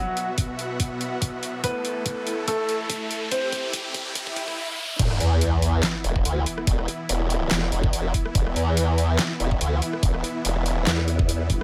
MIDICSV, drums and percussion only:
0, 0, Header, 1, 2, 480
1, 0, Start_track
1, 0, Tempo, 419580
1, 1874, Time_signature, 4, 2, 24, 8
1, 13310, End_track
2, 0, Start_track
2, 0, Title_t, "Drums"
2, 192, Note_on_c, 9, 42, 52
2, 306, Note_off_c, 9, 42, 0
2, 432, Note_on_c, 9, 42, 78
2, 433, Note_on_c, 9, 36, 94
2, 546, Note_off_c, 9, 42, 0
2, 547, Note_off_c, 9, 36, 0
2, 673, Note_on_c, 9, 42, 51
2, 787, Note_off_c, 9, 42, 0
2, 912, Note_on_c, 9, 42, 80
2, 913, Note_on_c, 9, 36, 95
2, 1027, Note_off_c, 9, 36, 0
2, 1027, Note_off_c, 9, 42, 0
2, 1153, Note_on_c, 9, 42, 52
2, 1267, Note_off_c, 9, 42, 0
2, 1393, Note_on_c, 9, 36, 97
2, 1393, Note_on_c, 9, 42, 77
2, 1507, Note_off_c, 9, 36, 0
2, 1508, Note_off_c, 9, 42, 0
2, 1634, Note_on_c, 9, 42, 52
2, 1748, Note_off_c, 9, 42, 0
2, 1873, Note_on_c, 9, 36, 101
2, 1873, Note_on_c, 9, 42, 74
2, 1987, Note_off_c, 9, 36, 0
2, 1987, Note_off_c, 9, 42, 0
2, 2113, Note_on_c, 9, 42, 51
2, 2227, Note_off_c, 9, 42, 0
2, 2353, Note_on_c, 9, 36, 104
2, 2353, Note_on_c, 9, 42, 76
2, 2467, Note_off_c, 9, 36, 0
2, 2467, Note_off_c, 9, 42, 0
2, 2593, Note_on_c, 9, 42, 51
2, 2707, Note_off_c, 9, 42, 0
2, 2833, Note_on_c, 9, 36, 104
2, 2833, Note_on_c, 9, 42, 78
2, 2947, Note_off_c, 9, 36, 0
2, 2948, Note_off_c, 9, 42, 0
2, 3073, Note_on_c, 9, 42, 51
2, 3188, Note_off_c, 9, 42, 0
2, 3313, Note_on_c, 9, 36, 101
2, 3314, Note_on_c, 9, 42, 77
2, 3427, Note_off_c, 9, 36, 0
2, 3428, Note_off_c, 9, 42, 0
2, 3554, Note_on_c, 9, 42, 52
2, 3668, Note_off_c, 9, 42, 0
2, 3792, Note_on_c, 9, 42, 73
2, 3793, Note_on_c, 9, 36, 103
2, 3907, Note_off_c, 9, 42, 0
2, 3908, Note_off_c, 9, 36, 0
2, 4032, Note_on_c, 9, 42, 50
2, 4033, Note_on_c, 9, 36, 105
2, 4147, Note_off_c, 9, 42, 0
2, 4148, Note_off_c, 9, 36, 0
2, 4272, Note_on_c, 9, 42, 76
2, 4273, Note_on_c, 9, 36, 107
2, 4387, Note_off_c, 9, 36, 0
2, 4387, Note_off_c, 9, 42, 0
2, 4512, Note_on_c, 9, 42, 51
2, 4513, Note_on_c, 9, 36, 108
2, 4627, Note_off_c, 9, 36, 0
2, 4627, Note_off_c, 9, 42, 0
2, 4752, Note_on_c, 9, 42, 77
2, 4753, Note_on_c, 9, 36, 105
2, 4867, Note_off_c, 9, 36, 0
2, 4867, Note_off_c, 9, 42, 0
2, 4884, Note_on_c, 9, 36, 93
2, 4993, Note_off_c, 9, 36, 0
2, 4993, Note_on_c, 9, 36, 107
2, 4993, Note_on_c, 9, 42, 50
2, 5107, Note_off_c, 9, 42, 0
2, 5108, Note_off_c, 9, 36, 0
2, 5124, Note_on_c, 9, 36, 96
2, 5238, Note_off_c, 9, 36, 0
2, 5713, Note_on_c, 9, 36, 117
2, 5714, Note_on_c, 9, 42, 81
2, 5714, Note_on_c, 9, 49, 101
2, 5828, Note_off_c, 9, 36, 0
2, 5828, Note_off_c, 9, 42, 0
2, 5828, Note_off_c, 9, 49, 0
2, 5844, Note_on_c, 9, 37, 50
2, 5953, Note_on_c, 9, 42, 55
2, 5959, Note_off_c, 9, 37, 0
2, 6067, Note_off_c, 9, 42, 0
2, 6193, Note_on_c, 9, 42, 86
2, 6308, Note_off_c, 9, 42, 0
2, 6433, Note_on_c, 9, 42, 56
2, 6547, Note_off_c, 9, 42, 0
2, 6672, Note_on_c, 9, 38, 122
2, 6672, Note_on_c, 9, 39, 93
2, 6672, Note_on_c, 9, 42, 84
2, 6786, Note_off_c, 9, 38, 0
2, 6786, Note_off_c, 9, 39, 0
2, 6786, Note_off_c, 9, 42, 0
2, 6913, Note_on_c, 9, 42, 56
2, 7027, Note_off_c, 9, 42, 0
2, 7044, Note_on_c, 9, 36, 62
2, 7153, Note_on_c, 9, 42, 82
2, 7158, Note_off_c, 9, 36, 0
2, 7267, Note_off_c, 9, 42, 0
2, 7394, Note_on_c, 9, 42, 56
2, 7508, Note_off_c, 9, 42, 0
2, 7524, Note_on_c, 9, 37, 50
2, 7633, Note_on_c, 9, 36, 122
2, 7633, Note_on_c, 9, 42, 81
2, 7638, Note_off_c, 9, 37, 0
2, 7747, Note_off_c, 9, 42, 0
2, 7748, Note_off_c, 9, 36, 0
2, 7764, Note_on_c, 9, 37, 52
2, 7872, Note_on_c, 9, 42, 54
2, 7878, Note_off_c, 9, 37, 0
2, 7987, Note_off_c, 9, 42, 0
2, 8114, Note_on_c, 9, 42, 84
2, 8228, Note_off_c, 9, 42, 0
2, 8353, Note_on_c, 9, 42, 56
2, 8468, Note_off_c, 9, 42, 0
2, 8593, Note_on_c, 9, 38, 125
2, 8593, Note_on_c, 9, 39, 96
2, 8593, Note_on_c, 9, 42, 81
2, 8707, Note_off_c, 9, 38, 0
2, 8707, Note_off_c, 9, 39, 0
2, 8707, Note_off_c, 9, 42, 0
2, 8724, Note_on_c, 9, 37, 51
2, 8832, Note_on_c, 9, 42, 54
2, 8838, Note_off_c, 9, 37, 0
2, 8947, Note_off_c, 9, 42, 0
2, 8964, Note_on_c, 9, 36, 115
2, 9073, Note_on_c, 9, 42, 81
2, 9078, Note_off_c, 9, 36, 0
2, 9188, Note_off_c, 9, 42, 0
2, 9314, Note_on_c, 9, 36, 64
2, 9314, Note_on_c, 9, 42, 55
2, 9428, Note_off_c, 9, 36, 0
2, 9428, Note_off_c, 9, 42, 0
2, 9444, Note_on_c, 9, 37, 51
2, 9553, Note_on_c, 9, 42, 78
2, 9554, Note_on_c, 9, 36, 126
2, 9558, Note_off_c, 9, 37, 0
2, 9667, Note_off_c, 9, 42, 0
2, 9668, Note_off_c, 9, 36, 0
2, 9684, Note_on_c, 9, 37, 54
2, 9793, Note_on_c, 9, 42, 53
2, 9798, Note_off_c, 9, 37, 0
2, 9908, Note_off_c, 9, 42, 0
2, 10033, Note_on_c, 9, 42, 80
2, 10148, Note_off_c, 9, 42, 0
2, 10273, Note_on_c, 9, 42, 52
2, 10388, Note_off_c, 9, 42, 0
2, 10513, Note_on_c, 9, 38, 127
2, 10513, Note_on_c, 9, 39, 94
2, 10513, Note_on_c, 9, 42, 78
2, 10627, Note_off_c, 9, 38, 0
2, 10627, Note_off_c, 9, 39, 0
2, 10627, Note_off_c, 9, 42, 0
2, 10754, Note_on_c, 9, 42, 52
2, 10868, Note_off_c, 9, 42, 0
2, 10884, Note_on_c, 9, 36, 67
2, 10993, Note_on_c, 9, 42, 77
2, 10998, Note_off_c, 9, 36, 0
2, 11108, Note_off_c, 9, 42, 0
2, 11234, Note_on_c, 9, 42, 52
2, 11349, Note_off_c, 9, 42, 0
2, 11364, Note_on_c, 9, 37, 49
2, 11473, Note_on_c, 9, 36, 126
2, 11474, Note_on_c, 9, 42, 75
2, 11478, Note_off_c, 9, 37, 0
2, 11587, Note_off_c, 9, 36, 0
2, 11588, Note_off_c, 9, 42, 0
2, 11605, Note_on_c, 9, 37, 55
2, 11714, Note_on_c, 9, 42, 51
2, 11719, Note_off_c, 9, 37, 0
2, 11828, Note_off_c, 9, 42, 0
2, 11953, Note_on_c, 9, 42, 77
2, 12067, Note_off_c, 9, 42, 0
2, 12192, Note_on_c, 9, 42, 52
2, 12307, Note_off_c, 9, 42, 0
2, 12433, Note_on_c, 9, 38, 127
2, 12433, Note_on_c, 9, 39, 91
2, 12433, Note_on_c, 9, 42, 77
2, 12547, Note_off_c, 9, 38, 0
2, 12547, Note_off_c, 9, 39, 0
2, 12547, Note_off_c, 9, 42, 0
2, 12563, Note_on_c, 9, 37, 56
2, 12673, Note_on_c, 9, 42, 50
2, 12678, Note_off_c, 9, 37, 0
2, 12788, Note_off_c, 9, 42, 0
2, 12803, Note_on_c, 9, 36, 112
2, 12913, Note_on_c, 9, 42, 75
2, 12918, Note_off_c, 9, 36, 0
2, 13028, Note_off_c, 9, 42, 0
2, 13153, Note_on_c, 9, 36, 67
2, 13154, Note_on_c, 9, 42, 50
2, 13267, Note_off_c, 9, 36, 0
2, 13268, Note_off_c, 9, 42, 0
2, 13310, End_track
0, 0, End_of_file